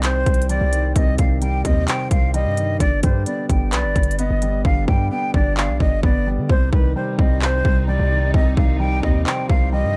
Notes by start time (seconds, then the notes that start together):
Already playing: C2 C3 D#3 G3 C4
0.03 C5, clap, closed hi-hat
0.26 C2, kick, closed hi-hat
0.34 closed hi-hat
0.42 closed hi-hat
0.49 G3 D5, closed hi-hat
0.61 C2
0.73 D#3, closed hi-hat
0.95 C2 C3 D#5, kick, closed hi-hat
1.18 C2 D#3 F5, kick, closed hi-hat
1.42 G3 G5, closed hi-hat
1.64 D#2 C4 D#5, kick, closed hi-hat
1.87 C5 G5, clap, closed hi-hat
2.11 C2 F5, kick, closed hi-hat
2.34 G3 D#5, closed hi-hat
2.46 G2
2.57 D#3, closed hi-hat
2.79 G1 D3 D5, kick, closed hi-hat
3.03 G2 G3 C5, kick, closed hi-hat
3.26 B3 D5, closed hi-hat
3.49 G1 G5, kick, closed hi-hat
3.72 B1 B4 D5, clap, closed hi-hat
3.84 G1
3.96 G1, kick, closed hi-hat
4.03 closed hi-hat
4.11 closed hi-hat
4.19 B3 D#5, closed hi-hat
4.30 G1
4.42 G3, closed hi-hat
4.65 G1 D3 F5, kick
4.88 G2 G3 G5, kick
5.11 B3 G5
5.34 G1 D4 D5, kick
5.57 D5 F5, clap
5.69 B1
5.80 G1 D#5, kick
6.03 G1 B3 D5, kick
6.27 G3
6.38 D3
6.49 C2 C3 G3 D#4 C5, kick
6.72 C2 D#3 B4, kick
6.96 G3 C5
7.18 C2 C4 D#5, kick
7.42 C5, clap
7.65 C2, kick
7.88 G3 D5
7.99 C2
8.11 D#3
8.34 C2 C3 F3 D#5, kick
8.57 C2 D#3 F5, kick
8.80 G3 G5
9.03 D#2 C4 D#5, kick
9.26 C5 G5, clap
9.49 C2 F5, kick
9.73 G3 D#5
9.84 G2